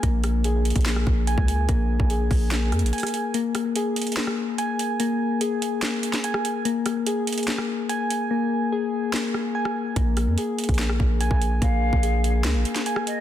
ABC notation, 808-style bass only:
X:1
M:4/4
L:1/16
Q:1/4=145
K:Abmix
V:1 name="808-style bass" clef=bass
B,,,6- B,,, B,,,3 B,,,3 D,,3 | B,,,3 B,,,3 B,,,4 F,, B,,, z4 | z16 | z16 |
z16 | z16 | B,,,3 F,, z3 B,,,3 B,,,3 B,,,3 | B,,,3 B,,,4- B,,, D,, B,,, z6 |]